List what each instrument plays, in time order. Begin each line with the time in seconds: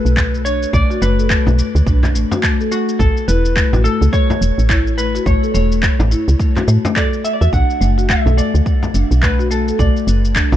Already playing: electric slide guitar B4, impact
0.05 fm bass B1, shaker
0.17 kick, clap, shaker
0.34 shaker
0.45 marimba D4, electric slide guitar C#5, shaker
0.63 shaker
0.73 fm bass B1, marimba A3, electric slide guitar D5, kick, shaker
0.90 marimba F#4, shaker
1.02 fm bass F#1, marimba A3, electric slide guitar B4, shaker
1.19 marimba A4, shaker
1.30 marimba A3, kick, clap, shaker
1.46 fm bass B1, frame drum, shaker
1.59 shaker
1.75 fm bass D2, shaker
1.87 fm bass B1, marimba D4, kick, shaker
2.03 clap, frame drum, shaker
2.15 fm bass A1, marimba A3, shaker
2.31 marimba F#4, frame drum, shaker
2.43 marimba A3, kick, clap, shaker
2.60 marimba A4, shaker
2.72 marimba A3, electric slide guitar F#4, shaker
2.89 shaker
2.99 fm bass A1, electric slide guitar A4, kick, shaker
3.17 shaker
3.28 fm bass E1, marimba E4, electric slide guitar B4, shaker
3.45 shaker
3.56 marimba A3, kick, clap, shaker
3.73 fm bass A1, marimba F#4, frame drum, shaker
3.84 marimba A3, electric slide guitar A4, shaker
4.01 fm bass C#2, marimba A4, shaker
4.13 marimba A3, electric slide guitar C#5, kick, shaker
4.30 frame drum, shaker
4.41 fm bass E1, shaker
4.58 fm bass A1, shaker
4.70 marimba E4, kick, clap, shaker
4.87 shaker
4.98 marimba A3, electric slide guitar B4, shaker
5.15 marimba F#4, shaker
5.26 fm bass A1, marimba A3, electric slide guitar C#5, kick, shaker
5.43 marimba A4, shaker
5.54 fm bass E1, marimba A3, electric slide guitar C#5, shaker
5.72 shaker
5.83 kick, clap, shaker
5.99 fm bass A1, frame drum, shaker
6.11 marimba E4, shaker
6.28 fm bass C#2, shaker
6.40 marimba A3, kick, shaker
6.56 marimba F#4, clap, frame drum, shaker
6.68 fm bass A2, marimba A3, shaker
6.85 marimba A3, frame drum, shaker
6.96 marimba A4, electric slide guitar D5, kick, clap, shaker
7.13 shaker
7.25 electric slide guitar E5, shaker
7.33 electric slide guitar D5
7.41 fm bass E2, marimba F#4, electric slide guitar E5, shaker
7.53 fm bass B1, marimba D4, electric slide guitar F#5, kick, shaker
7.70 shaker
7.81 fm bass F#1, marimba A3, shaker
7.98 marimba F#4, shaker
8.09 marimba A3, electric slide guitar E5, kick, clap, shaker
8.26 fm bass B1, marimba A4, frame drum, shaker
8.37 marimba A3, electric slide guitar D5, shaker
8.54 fm bass D2, shaker
8.66 kick, shaker
8.83 frame drum, shaker
8.94 fm bass F#1, marimba D4, shaker
9.11 fm bass B1, shaker
9.22 marimba A3, electric slide guitar B4, kick, clap, shaker
9.39 marimba F#4, shaker
9.51 marimba A3, electric slide guitar A4, shaker
9.68 marimba A4, shaker
9.79 fm bass B1, marimba A3, electric slide guitar D5, kick, shaker
9.97 shaker
10.07 fm bass F#1, shaker
10.25 shaker
10.36 marimba D4, kick, clap, shaker
10.52 fm bass B1, frame drum, shaker